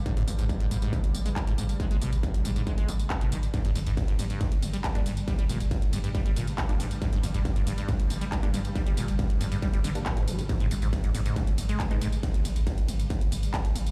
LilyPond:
<<
  \new Staff \with { instrumentName = "Synth stab" } { \time 4/4 \key g \phrygian \tempo 4 = 138 r1 | r1 | r2. r16 <g bes d'>16 r8 | r2. r16 <g bes d'>16 r8 |
r2. r16 <g bes d'>16 r8 | r2 r8. <g bes d'>8 r8. | r2. r16 <aes ces' ees'>16 r8 | r1 | }
  \new Staff \with { instrumentName = "Synth drone" } { \clef bass \time 4/4 \key g \phrygian <g, g>1~ | <g, g>1 | <g, g>1~ | <g, g>1~ |
<g, g>1~ | <g, g>1~ | <g, g>1~ | <g, g>1 | }
  \new Staff \with { instrumentName = "Acid bass" } { \clef bass \time 4/4 \key g \phrygian aes,16 aes,16 fis,16 aes,16 r16 aes,16 aes,16 aes,16 ees16 r8 aes16 r16 aes,16 aes,16 r16 | aes16 aes16 ces16 r8. aes,16 aes,16 aes16 aes16 bes,16 r8 ces16 ees16 r16 | g,16 g,16 f,16 g,16 r16 g,16 g,16 g,16 d16 r8 g16 r16 g,16 g,16 r16 | g16 g16 bes,16 r8. g,16 g,16 g16 g16 bes,16 r8 g,,16 g,16 r16 |
g,16 g,16 f,16 g,16 r16 g,16 g,16 g,16 d16 r8 g16 r16 g,16 g,16 r16 | g16 g16 bes,16 r8. g,16 g,16 g16 g16 d16 r16 bes,16 g,16 g16 g,16 | aes,16 aes,16 fis,16 aes,16 r16 aes,16 aes,16 aes,16 ees16 r8 aes16 aes,16 aes,16 aes,16 r16 | r1 | }
  \new Staff \with { instrumentName = "Sub bass" } { \clef bass \time 4/4 \key g \phrygian r16 aes,,16 aes,,16 aes,,16 r16 aes,,16 aes,,16 r8 aes,,16 aes,,16 r8 aes,,16 aes,,16 r16 | r16 aes,,16 aes,,16 aes,,16 r16 aes,,16 aes,,16 r8 aes,,16 aes,,16 r8 aes,,16 aes,,16 r16 | r16 g,,16 g,,16 g,,16 r16 g,,16 g,,16 r8 g,,16 g,,16 r8 g,,16 g,,16 r16 | r16 g,,16 g,,16 g,,16 r16 g,,16 g,,16 r8 g,,16 g,,16 r8 g,,16 g,,16 r16 |
r16 g,,16 g,,16 g,,16 r16 g,,16 g,,16 r8 g,,16 g,,16 r8 g,,16 g,,16 r16 | r16 g,,16 g,,16 g,,16 r16 g,,16 g,,16 r8 g,,16 g,,16 r8 g,,16 g,,16 r16 | r16 aes,,16 aes,,16 aes,,16 r16 aes,,16 aes,,16 r8 aes,,16 aes,,16 r8 aes,,16 aes,,16 r16 | r16 aes,,16 aes,,16 aes,,16 r16 aes,,16 aes,,16 r8 aes,,16 aes,,16 r8 aes,,16 aes,,16 r16 | }
  \new DrumStaff \with { instrumentName = "Drums" } \drummode { \time 4/4 <hh bd tamb toml>16 hh16 <hho tamb toml>16 <hh tamb>16 <hh bd tamb toml>16 hh16 <hho tamb toml>16 <hh tamb>16 <hh bd tamb toml>16 hh16 <hho tamb toml>16 <hh tamb>16 <hc hh bd tamb toml>16 hh16 <hho tamb toml>16 <hh tamb>16 | <hh bd tamb toml>16 hh16 <hho tamb toml>16 <hh tamb>16 <hh bd tamb toml>16 hh16 <hho tamb toml>16 <hh tamb>16 <hh bd tamb toml>16 hh16 <hho tamb toml>16 <hh tamb>16 <hc hh bd tamb toml>16 hh16 <hho tamb toml>16 <hh tamb>16 | <hh bd cymr tamb toml>16 hh16 <hho cymr tamb toml>16 <hh tamb>16 <hh bd cymr tamb toml>16 hh16 <hho cymr tamb toml>16 <hh tamb>16 <hh bd cymr tamb toml>16 hh16 <hho cymr tamb toml>16 <hh tamb>16 <hc hh bd cymr tamb toml>16 hh16 <hho cymr tamb toml>16 <hh tamb>16 | <hh bd cymr tamb toml>16 hh16 <hho cymr tamb toml>16 <hh tamb>16 <hh bd cymr tamb toml>16 hh16 <hho cymr tamb toml>16 <hh tamb>16 <hh bd cymr tamb toml>16 hh16 <hho cymr tamb toml>16 <hh tamb>16 <hc hh bd cymr tamb toml>16 hh16 <hho cymr tamb toml>16 <hh tamb>16 |
<hh bd cymr tamb toml>16 hh16 <hho cymr tamb toml>16 <hh tamb>16 <hh bd cymr tamb toml>16 hh16 <hho cymr tamb toml>16 <hh tamb>16 <hh bd cymr tamb toml>16 hh16 <hho cymr tamb toml>16 <hh tamb>16 <hc hh bd cymr tamb toml>16 hh16 <hho cymr tamb toml>16 <hh tamb>16 | <hh bd cymr tamb toml>16 hh16 <hho cymr tamb toml>16 <hh tamb>16 <hh bd cymr tamb toml>16 hh16 <hho cymr tamb toml>16 <hh tamb>16 <hh bd cymr tamb toml>16 hh16 <hho cymr tamb toml>16 <hh tamb>16 <hc hh bd cymr tamb toml>16 hh16 <hho cymr tamb toml>16 <hh tamb>16 | <hh bd cymr tamb toml>16 hh16 <hho cymr tamb toml>16 <hh tamb>16 <hh bd cymr tamb toml>16 hh16 <hho cymr tamb toml>16 <hh tamb>16 <hh bd cymr tamb toml>16 hh16 <hho cymr tamb toml>16 <hh tamb>16 <hc hh bd cymr tamb toml>16 hh16 <hho cymr tamb toml>16 <hh tamb>16 | <hh bd cymr tamb toml>16 hh16 <hho cymr tamb toml>16 <hh tamb>16 <hh bd cymr tamb toml>16 hh16 <hho cymr tamb toml>16 <hh tamb>16 <hh bd cymr tamb toml>16 hh16 <hho cymr tamb toml>16 <hh tamb>16 <hc hh bd cymr tamb toml>16 hh16 <hho cymr tamb toml>16 <hh tamb>16 | }
>>